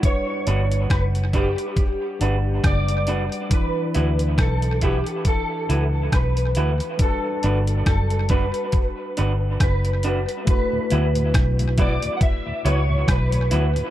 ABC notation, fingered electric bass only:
X:1
M:4/4
L:1/16
Q:"Swing 16ths" 1/4=69
K:D
V:1 name="Fingered electric bass" clef=bass
z2 G,,,2 F,,,3 z3 G,,,2 F,,,3 z | z2 D,,2 B,,,3 z3 C,,2 B,,,2 D,, z | z2 G,,,2 F,,,3 z3 G,,,2 F,,,3 z | z2 D,,2 B,,,3 z3 C,,2 B,,,2 D,, z |]